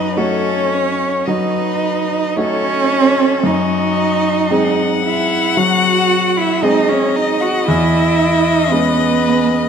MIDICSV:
0, 0, Header, 1, 5, 480
1, 0, Start_track
1, 0, Tempo, 1098901
1, 1034, Tempo, 1073345
1, 1516, Time_signature, 4, 2, 24, 8
1, 1994, Tempo, 1052632
1, 4353, End_track
2, 0, Start_track
2, 0, Title_t, "Violin"
2, 0, Program_c, 0, 40
2, 0, Note_on_c, 0, 75, 68
2, 62, Note_off_c, 0, 75, 0
2, 65, Note_on_c, 0, 73, 83
2, 551, Note_on_c, 0, 75, 63
2, 558, Note_off_c, 0, 73, 0
2, 1031, Note_on_c, 0, 73, 88
2, 1037, Note_off_c, 0, 75, 0
2, 1515, Note_on_c, 0, 75, 72
2, 1522, Note_off_c, 0, 73, 0
2, 2228, Note_off_c, 0, 75, 0
2, 2231, Note_on_c, 0, 76, 78
2, 2476, Note_on_c, 0, 78, 84
2, 2483, Note_off_c, 0, 76, 0
2, 2840, Note_off_c, 0, 78, 0
2, 2849, Note_on_c, 0, 76, 77
2, 2960, Note_on_c, 0, 75, 75
2, 2967, Note_off_c, 0, 76, 0
2, 3081, Note_on_c, 0, 73, 78
2, 3088, Note_off_c, 0, 75, 0
2, 3201, Note_on_c, 0, 75, 83
2, 3208, Note_off_c, 0, 73, 0
2, 3315, Note_on_c, 0, 78, 83
2, 3322, Note_off_c, 0, 75, 0
2, 3436, Note_off_c, 0, 78, 0
2, 3439, Note_on_c, 0, 76, 85
2, 3908, Note_on_c, 0, 71, 97
2, 3915, Note_off_c, 0, 76, 0
2, 4353, Note_off_c, 0, 71, 0
2, 4353, End_track
3, 0, Start_track
3, 0, Title_t, "Violin"
3, 0, Program_c, 1, 40
3, 0, Note_on_c, 1, 71, 79
3, 77, Note_on_c, 1, 69, 71
3, 83, Note_off_c, 1, 71, 0
3, 324, Note_on_c, 1, 73, 66
3, 331, Note_off_c, 1, 69, 0
3, 558, Note_on_c, 1, 71, 61
3, 565, Note_off_c, 1, 73, 0
3, 1036, Note_off_c, 1, 71, 0
3, 1040, Note_on_c, 1, 69, 70
3, 1523, Note_on_c, 1, 66, 77
3, 1529, Note_off_c, 1, 69, 0
3, 1999, Note_on_c, 1, 78, 93
3, 2006, Note_off_c, 1, 66, 0
3, 2964, Note_on_c, 1, 75, 87
3, 2971, Note_off_c, 1, 78, 0
3, 4353, Note_off_c, 1, 75, 0
3, 4353, End_track
4, 0, Start_track
4, 0, Title_t, "Cello"
4, 0, Program_c, 2, 42
4, 0, Note_on_c, 2, 63, 78
4, 75, Note_on_c, 2, 61, 95
4, 81, Note_off_c, 2, 63, 0
4, 557, Note_on_c, 2, 63, 82
4, 563, Note_off_c, 2, 61, 0
4, 1033, Note_on_c, 2, 61, 112
4, 1040, Note_off_c, 2, 63, 0
4, 1514, Note_on_c, 2, 63, 86
4, 1521, Note_off_c, 2, 61, 0
4, 2233, Note_off_c, 2, 63, 0
4, 2236, Note_on_c, 2, 64, 86
4, 2477, Note_on_c, 2, 66, 102
4, 2484, Note_off_c, 2, 64, 0
4, 2841, Note_on_c, 2, 64, 86
4, 2848, Note_off_c, 2, 66, 0
4, 2952, Note_on_c, 2, 63, 93
4, 2958, Note_off_c, 2, 64, 0
4, 3077, Note_on_c, 2, 61, 88
4, 3084, Note_off_c, 2, 63, 0
4, 3200, Note_on_c, 2, 63, 81
4, 3207, Note_off_c, 2, 61, 0
4, 3319, Note_on_c, 2, 66, 91
4, 3326, Note_off_c, 2, 63, 0
4, 3431, Note_off_c, 2, 66, 0
4, 3433, Note_on_c, 2, 64, 99
4, 3910, Note_on_c, 2, 59, 103
4, 3916, Note_off_c, 2, 64, 0
4, 4353, Note_off_c, 2, 59, 0
4, 4353, End_track
5, 0, Start_track
5, 0, Title_t, "Grand piano"
5, 0, Program_c, 3, 0
5, 0, Control_c, 3, 64, 127
5, 0, Note_on_c, 3, 42, 57
5, 59, Note_off_c, 3, 42, 0
5, 73, Note_on_c, 3, 57, 46
5, 76, Note_on_c, 3, 66, 52
5, 77, Note_on_c, 3, 63, 45
5, 538, Note_off_c, 3, 57, 0
5, 540, Note_off_c, 3, 63, 0
5, 540, Note_off_c, 3, 66, 0
5, 557, Note_on_c, 3, 54, 57
5, 1035, Note_on_c, 3, 57, 44
5, 1037, Note_on_c, 3, 63, 53
5, 1039, Note_on_c, 3, 66, 50
5, 1325, Note_off_c, 3, 54, 0
5, 1499, Note_off_c, 3, 57, 0
5, 1499, Note_off_c, 3, 63, 0
5, 1501, Note_off_c, 3, 66, 0
5, 1511, Note_on_c, 3, 42, 62
5, 1524, Control_c, 3, 64, 0
5, 1598, Control_c, 3, 64, 127
5, 1977, Note_off_c, 3, 42, 0
5, 1991, Note_on_c, 3, 56, 50
5, 1991, Note_on_c, 3, 60, 47
5, 1995, Note_on_c, 3, 68, 50
5, 2460, Note_off_c, 3, 56, 0
5, 2460, Note_off_c, 3, 60, 0
5, 2462, Note_off_c, 3, 68, 0
5, 2476, Note_on_c, 3, 54, 62
5, 2956, Note_on_c, 3, 56, 55
5, 2960, Note_on_c, 3, 60, 52
5, 2960, Note_on_c, 3, 68, 57
5, 3247, Note_off_c, 3, 54, 0
5, 3419, Note_off_c, 3, 56, 0
5, 3420, Note_off_c, 3, 68, 0
5, 3421, Note_off_c, 3, 60, 0
5, 3438, Note_on_c, 3, 40, 71
5, 3447, Control_c, 3, 64, 0
5, 3528, Control_c, 3, 64, 127
5, 3900, Note_off_c, 3, 40, 0
5, 3912, Note_on_c, 3, 56, 47
5, 3913, Note_on_c, 3, 61, 47
5, 3914, Note_on_c, 3, 68, 54
5, 4353, Note_off_c, 3, 56, 0
5, 4353, Note_off_c, 3, 61, 0
5, 4353, Note_off_c, 3, 68, 0
5, 4353, End_track
0, 0, End_of_file